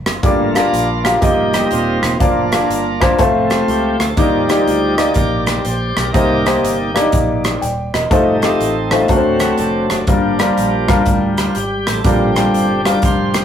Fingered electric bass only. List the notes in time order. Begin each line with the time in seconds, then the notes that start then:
0.06 F#1
0.23 G1
0.73 A#1
1.22 F1
1.72 D#1
2.03 E1
2.21 F1
2.70 G1
3.19 F1
3.68 C#2
4.00 D2
4.17 D#2
4.67 D2
5.16 A#1
5.65 A#1
5.97 B1
6.15 C2
6.64 G1
7.13 A#1
7.62 D#1
7.94 E1
8.11 F1
8.60 A1
9.09 D2
9.59 F1
9.91 F#1
10.08 G1
10.58 A#1
11.06 D2
11.56 G#1
11.88 A1
12.05 A#1
12.54 G1
13.03 F1